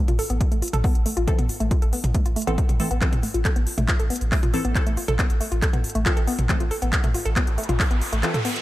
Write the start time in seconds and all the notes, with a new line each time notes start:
0.08 A1 F4, closed hi-hat, mid tom
0.19 A4, open hi-hat
0.30 A1 B3, closed hi-hat
0.41 kick, closed hi-hat
0.52 A1 A3, closed hi-hat
0.62 F4, open hi-hat
0.68 closed hi-hat
0.73 A1 A4, closed hi-hat, mid tom
0.84 B3, kick, open hi-hat
0.95 A1, closed hi-hat
1.06 A3, open hi-hat
1.17 A1 F4, closed hi-hat
1.28 E3 C4 A4, kick, closed hi-hat
1.39 A1 B3, closed hi-hat, mid tom
1.49 open hi-hat
1.60 A1 A3, closed hi-hat
1.71 F4, kick, closed hi-hat
1.82 A1 A4, closed hi-hat
1.93 B3, open hi-hat
2.04 A1, closed hi-hat, mid tom
2.15 A3, kick, closed hi-hat
2.26 A1 F4, closed hi-hat
2.36 A3, open hi-hat
2.42 closed hi-hat
2.47 A1 E3 B3 C4 A4, closed hi-hat
2.58 kick, closed hi-hat
2.69 A1 G3, closed hi-hat, mid tom
2.80 E3 A3 C4 A4, open hi-hat
2.91 A1 B3, closed hi-hat
3.01 E3 B3 C4 A4, kick, clap, closed hi-hat
3.13 A1, closed hi-hat, mid tom
3.23 A3, open hi-hat
3.34 A1 F4, closed hi-hat
3.45 A4, kick, clap, closed hi-hat
3.56 A1 B3, closed hi-hat
3.67 open hi-hat
3.78 A1 A3, closed hi-hat, mid tom
3.88 F4, kick, clap, closed hi-hat
3.99 A1 A4, closed hi-hat
4.10 B3, open hi-hat
4.16 closed hi-hat
4.21 A1, closed hi-hat
4.32 A3, kick, clap, open hi-hat
4.43 A1 F4, closed hi-hat, mid tom
4.54 E3 C4 A4, open hi-hat
4.65 A1 B3, closed hi-hat
4.75 E3 C4 A4, kick, clap, closed hi-hat
4.86 A1 A3, closed hi-hat
4.97 F4, open hi-hat
5.08 A1 A4, closed hi-hat, mid tom
5.19 B3, kick, clap, closed hi-hat
5.30 A1, closed hi-hat
5.41 A3, open hi-hat
5.52 A1 F4, closed hi-hat
5.62 A4, kick, clap, closed hi-hat
5.73 A1 B3, closed hi-hat, mid tom
5.84 open hi-hat
5.90 closed hi-hat
5.95 A1 A3, closed hi-hat
6.06 E3 C4 F4 A4, kick, clap, closed hi-hat
6.17 A1 A4, closed hi-hat
6.27 B3, open hi-hat
6.39 A1, closed hi-hat, mid tom
6.49 E3 A3 C4 A4, kick, clap, closed hi-hat, riser
6.60 A1 F4, closed hi-hat
6.71 A4, open hi-hat
6.82 A1 B3, closed hi-hat
6.93 kick, clap, closed hi-hat
7.04 A1 A3, closed hi-hat, mid tom
7.14 F4, open hi-hat
7.25 A1 A4, closed hi-hat
7.36 B3, kick, clap, closed hi-hat
7.47 A1, closed hi-hat
7.58 A3, open hi-hat
7.64 closed hi-hat
7.69 A1 F4, closed hi-hat, mid tom
7.80 A4, kick, clap, open hi-hat
7.91 A1 B3, closed hi-hat
8.01 open hi-hat
8.12 A1 A3, closed hi-hat
8.23 E3 C4 F4 A4, clap, closed hi-hat
8.34 A4, closed hi-hat, mid tom
8.45 B3, open hi-hat
8.56 closed hi-hat